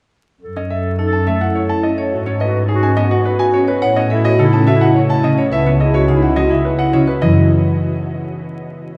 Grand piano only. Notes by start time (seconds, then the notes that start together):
0.57 D#5
0.70 E5
0.99 A4
1.13 A5
1.27 E5
1.41 F#5
1.55 C#5
1.69 A5
1.83 D#5
1.98 C#5
2.26 C#5
2.41 D#5
2.69 G#4
2.83 G#5
2.97 D#5
3.11 F#5
3.26 B4
3.39 G#5
3.54 C#5
3.68 B4
3.82 F#5
3.96 D#5
4.11 E5
4.25 D#5
4.39 A4
4.53 A5
4.67 E5
4.81 F#5
4.95 C#5
5.10 A5
5.24 D#5
5.38 C#5
5.52 E5
5.66 C#5
5.81 D#5
5.94 C#5
6.08 G#4
6.22 F#5
6.36 D#5
6.51 E5
6.65 B4
6.79 F#5
6.93 C#5
7.08 B4
7.22 D#5